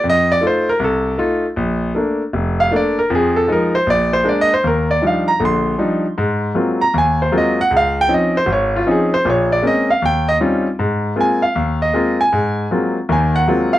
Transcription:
X:1
M:4/4
L:1/8
Q:"Swing" 1/4=156
K:Bb
V:1 name="Grand piano"
e d c B A2 z2 | z4 z f d B | _A =A B c d c (3d e c | [K:Ablyd] B d f b c'4- |
c'2 z b a c e _g | f g e c _d F A c | _d =d e f g e z2 | z2 a f2 e2 a- |
a2 z2 a _g2 f |]
V:2 name="Grand piano"
F,,2 [A,EF] z C,,2 [A,EF] z | B,,,2 [A,B,D] z F,,,2 [A,B,D] z | [F,,F,]2 [F,_A,E] z B,,,2 [A,B,D] z | [K:Ablyd] E,,2 [F,G,DE] z [B,,,D,]2 [F,G,DE] z |
A,,2 [_G,A,B,CF] z E,,2 [G,A,B,CF] z | _D,,2 [F,C_DE] z A,,,2 [F,CDE] z | [B,,,B,,]2 [A,B,C_D] z E,,2 [G,CDEF] z | A,,2 [A,B,CF] z E,,2 [A,B,CF] z |
A,,2 [_G,A,B,CF] z [E,,E,]2 [G,A,B,CF] z |]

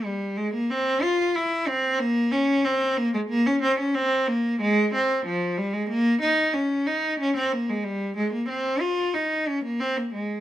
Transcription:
X:1
M:4/4
L:1/16
Q:1/4=92
K:Cphr
V:1 name="Cello"
G,2 A, B, C2 F2 _F2 C2 B,2 D2 | C2 B, A, B, D C D C2 B,2 A,2 C2 | [K:Fm] F,2 G, A, B,2 E2 D2 E2 D C B, A, | G,2 A, B, C2 F2 E2 D B, C B, A,2 |]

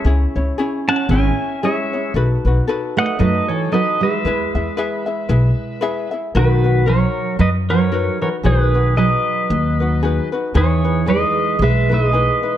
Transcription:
X:1
M:4/4
L:1/8
Q:"Swing" 1/4=114
K:E
V:1 name="Pedal steel guitar"
z3 [fa] [eg]2 [ce]2 | z3 [df] [Bd] [Ac] [Bd] [Be]- | [Be]6- [Be] z | [K:B] [FB]2 [Ac]2 [Bd] [Ac]2 [Ac] |
[GB]2 [Bd]4- [Bd] z | [Gc]2 [Bd]2 [Be] [Bd]3 |]
V:2 name="Ukulele"
[CEGc] [CEc] [CEGc] [CEc] [CEGc]2 [CEGc] [CEc] | [DFAB] [DFB] [DFAB] [DFB] [DFAB]2 [DFAB] [DFB] | [EGBe] [EGe] [EGBe] [EGe] [EGBe]2 [EGBe] [EGe] | [K:B] [DFAB] [DFB] [DFA]3 [DFB] [DFAB] [DFB] |
[DFGB] [DFB] [DFGB]3 [DFB] [DFGB] [DFB] | [DEGB] [DEB] [DEGB]3 [DEB] [DEGB] [DEB] |]
V:3 name="Steel-string acoustic guitar" clef=bass
z3 C C2 G,2 | z3 A, F, E, F, G,- | G,6- G, z | [K:B] D,2 F,2 F, F,2 E, |
D,2 F,4- F, z | E,2 G,2 G, G,3 |]
V:4 name="Upright bass" clef=bass
C,, C,, z2 G,,, z3 | B,,, B,,, z2 F,, z3 | E,, E,, z2 B,,, z3 | [K:B] B,,,4 F,,4 |
B,,,4 D,,4 | E,,4 B,,,4 |]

